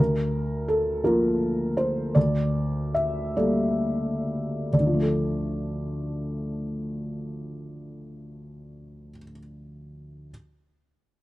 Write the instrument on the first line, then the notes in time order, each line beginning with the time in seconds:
felt piano
Already playing: D2
0.00 A#4
0.68 A4
1.04 F3 A#3 F4 A#4
1.77 C5
2.15 D2 D5
2.94 E5
3.37 G3 A#3 A4 D5
4.73 D2 D5
4.80 D3
4.87 F3
4.94 A3
5.01 A4